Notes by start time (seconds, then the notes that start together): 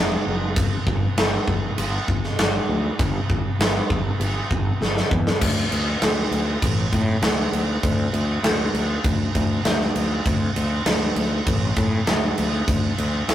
Already playing: F1
0.26 F#1
0.56 G1, kick, crash
0.87 G1, kick
1.17 G1, snare, crash
1.48 G1, kick
1.78 G1, crash
2.08 G1, kick
2.24 snare
2.39 G1, snare, crash
2.69 D2
2.99 G1, kick, crash
3.30 G1, kick
3.59 G1, snare, crash
3.90 G1, kick
4.20 G1, crash
4.51 G1, kick
4.81 G1, snare
4.97 snare
5.11 E2, kick
5.27 snare
5.41 D2, kick, crash
5.71 D2, crash
6.02 D2, snare, crash
6.31 D2, crash
6.62 A1, kick, crash
6.92 A2, kick, crash
7.22 D2, snare, crash
7.53 D2, crash
7.83 D2, kick, crash
8.13 D2, crash
8.43 D2, snare, crash
8.73 D2, crash
9.04 D2, kick, crash
9.35 D2, kick, crash
9.65 D2, snare, crash
9.81 snare
9.96 D2, crash
10.25 D2, kick, crash
10.56 D2, crash
10.86 D2, snare, crash
11.16 D2, crash
11.47 A1, kick, crash
11.76 A2, kick, crash
12.07 D2, snare, crash
12.38 D2, crash
12.68 D2, kick, crash
12.98 D2, crash
13.28 D2, snare, crash